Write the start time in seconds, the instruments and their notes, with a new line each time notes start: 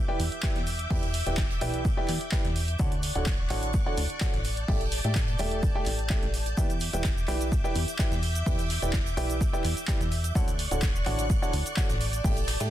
Already playing: string machine E5 D6 G6
0.08 upright piano E3 G4 B4 D5 E5 G5
0.20 analog synth bass E2, open hi-hat, shaker
0.32 closed hi-hat
0.43 upright piano E3 G4 B4 D5 E5 G5, kick, snare, clap, shaker
0.56 analog synth bass E2, snare, closed hi-hat
0.67 open hi-hat, shaker
0.79 closed hi-hat
0.90 analog synth bass E2, upright piano E3 G4 B4 D5 E5 G5, kick, open hi-hat
1.03 closed hi-hat
1.14 snare, open hi-hat, shaker
1.26 analog synth bass E1, upright piano E3 G4 B4 D5 E5 G5, closed hi-hat
1.37 kick, snare, clap, shaker
1.50 closed hi-hat
1.61 analog synth bass B1, upright piano E3 G4 B4 D5 E5 G5, open hi-hat, shaker
1.74 closed hi-hat
1.85 kick, shaker
1.97 upright piano E3 G4 B4 D5 E5 G5
2.08 analog synth bass E2, clap, open hi-hat, shaker
2.21 closed hi-hat
2.32 upright piano E3 G4 B4 D5 E5 G5, kick, snare, clap, shaker
2.45 analog synth bass E2, snare, closed hi-hat
2.56 open hi-hat, shaker
2.68 closed hi-hat
2.79 analog synth bass D2, upright piano D3 F#4 A4 C#5 D5 F#5, string machine D5 C#6 F#6, kick, shaker
2.92 closed hi-hat
3.03 open hi-hat, shaker
3.15 analog synth bass D1, upright piano D3 F#4 A4 C#5 D5 F#5, closed hi-hat
3.26 kick, snare, clap, shaker
3.50 analog synth bass A1, upright piano D3 F#4 A4 C#5 D5 F#5, clap, open hi-hat, shaker
3.63 closed hi-hat
3.74 kick, shaker
3.86 upright piano D3 F#4 A4 C#5 D5 F#5
3.97 analog synth bass D2, open hi-hat, shaker
4.10 closed hi-hat
4.21 upright piano F#4 A4 C#5 D5 F#5, kick, snare, clap, shaker
4.33 analog synth bass A1, snare, closed hi-hat
4.44 string machine A5 G6, open hi-hat, shaker
4.57 closed hi-hat
4.68 analog synth bass A1, upright piano A3 G4 A4 D5 E5 G5, kick, open hi-hat
4.81 closed hi-hat
4.92 snare, open hi-hat, shaker
5.04 analog synth bass A2, upright piano A3 G4 A4 D5 E5 G5, closed hi-hat
5.15 kick, snare, clap, shaker
5.28 closed hi-hat
5.38 analog synth bass E1, upright piano A3 G4 A4 D5 E5 G5, open hi-hat, shaker
5.52 closed hi-hat
5.63 kick, shaker
5.75 upright piano A3 G4 A4 D5 E5 G5
5.86 analog synth bass A1, clap, open hi-hat, shaker
5.99 closed hi-hat
6.10 upright piano A3 G4 A4 D5 E5 G5, kick, snare, clap, shaker
6.23 analog synth bass A1, snare, closed hi-hat
6.34 open hi-hat, shaker
6.46 closed hi-hat
6.57 analog synth bass E2, upright piano E3 G4 B4 D5 E5 G5, string machine E5 D6, kick, shaker
6.70 closed hi-hat, shaker
6.80 open hi-hat, shaker
6.93 analog synth bass E1, upright piano E3 G4 B4 D5 E5 G5, closed hi-hat, shaker
7.04 kick, snare, clap, shaker
7.18 shaker
7.28 analog synth bass B1, upright piano E3 G4 B4 D5 E5 G5, clap, open hi-hat, shaker
7.41 closed hi-hat, shaker
7.52 kick, shaker
7.64 upright piano E3 G4 B4 D5 E5 G5, shaker
7.75 analog synth bass E2, open hi-hat, shaker
7.88 closed hi-hat, shaker
7.99 upright piano E3 G4 B4 D5 E5 G5, kick, snare, clap, shaker
8.11 analog synth bass E2, snare, closed hi-hat, shaker
8.23 open hi-hat, shaker
8.35 closed hi-hat, shaker
8.46 analog synth bass E2, upright piano E3 G4 B4 D5 E5 G5, kick, open hi-hat, shaker
8.59 closed hi-hat, shaker
8.70 snare, open hi-hat, shaker
8.82 analog synth bass E1, upright piano E3 G4 B4 D5 E5 G5, closed hi-hat, shaker
8.93 kick, snare, clap, shaker
9.06 closed hi-hat, shaker
9.17 analog synth bass B1, upright piano E3 G4 B4 D5 E5 G5, open hi-hat, shaker
9.30 closed hi-hat, shaker
9.41 kick, shaker
9.53 upright piano E3 G4 B4 D5 E5 G5, shaker
9.64 analog synth bass E2, clap, open hi-hat, shaker
9.77 closed hi-hat, shaker
9.88 upright piano E3 G4 B4 D5 E5 G5, kick, snare, clap, shaker
10.00 analog synth bass E2, snare, closed hi-hat, shaker
10.12 open hi-hat, shaker
10.24 closed hi-hat, shaker
10.35 analog synth bass D2, upright piano D3 F#4 A4 C#5 D5 F#5, string machine D5 C#6 F#6, kick, shaker
10.48 closed hi-hat, shaker
10.59 open hi-hat, shaker
10.71 analog synth bass D1, upright piano D3 F#4 A4 C#5 D5 F#5, closed hi-hat, shaker
10.82 kick, snare, clap, shaker
10.96 shaker
11.06 analog synth bass A1, upright piano D3 F#4 A4 C#5 D5 F#5, clap, open hi-hat, shaker
11.19 closed hi-hat, shaker
11.30 kick, shaker
11.42 upright piano D3 F#4 A4 C#5 D5 F#5, shaker
11.53 analog synth bass D2, open hi-hat, shaker
11.66 closed hi-hat, shaker
11.77 upright piano F#4 A4 C#5 D5 F#5, kick, snare, clap, shaker
11.89 analog synth bass A1, snare, closed hi-hat, shaker
12.01 string machine A5 G6, open hi-hat, shaker
12.13 closed hi-hat, shaker
12.24 analog synth bass A1, upright piano A3 G4 A4 D5 E5 G5, kick, open hi-hat, shaker
12.37 closed hi-hat, shaker
12.47 snare, open hi-hat, shaker
12.60 analog synth bass A2, upright piano A3 G4 A4 D5 E5 G5, snare, closed hi-hat, shaker